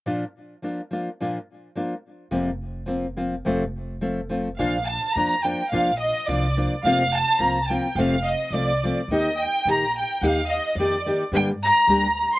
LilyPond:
<<
  \new Staff \with { instrumentName = "Violin section" } { \time 2/4 \key bes \major \tempo 4 = 106 r2 | r2 | r2 | r2 |
f''8 a''8 bes''8 g''8 | f''8 ees''8 d''8. r16 | f''8 a''8 bes''16. a''32 g''8 | f''8 ees''8 d''8. r16 |
ees''8 g''8 bes''8 g''8 | f''8 ees''8 d''8. r16 | g''8 bes''4~ bes''16 c'''16 | }
  \new Staff \with { instrumentName = "Nylon-string guitar" } { \time 2/4 \key bes \major <bes, f bes d' f'>8 r8 <f bes d' f'>8 <f bes d' f'>8 | <bes, f bes d' f'>8 r8 <f bes d' f'>8 r8 | <f, c f bes c' f'>8 r8 <f bes c' f'>8 <f bes c' f'>8 | <f, c f a c' f'>8 r8 <f a c' f'>8 <f a c' f'>8 |
<bes, f bes d' f'>8 r8 <f bes d' f'>8 <f bes d' f'>8 | <bes, f bes d' f'>8 r8 <f bes d' f'>8 <f bes d' f'>8 | <f, c f bes c' f'>8 r8 <f bes c' f'>8 <f bes c' f'>8 | <f, c f a c' f'>8 r8 <f a c' f'>8 <f a c' f'>8 |
<ees bes ees' g'>8 r8 <ees bes ees' g'>8 r8 | <ees bes ees' g'>8 r8 <ees bes ees' g'>8 <ees bes ees' g'>8 | <g, d g bes d' g'>8 r8 <g bes d' g'>8 r8 | }
  \new Staff \with { instrumentName = "Upright bass" } { \clef bass \time 2/4 \key bes \major r2 | r2 | f,,2 | f,,2 |
bes,,4 f,4 | bes,,4 c,4 | f,,4 c,4 | f,,4 c,4 |
ees,4 bes,,4 | ees,4 f,4 | g,4 d,4 | }
>>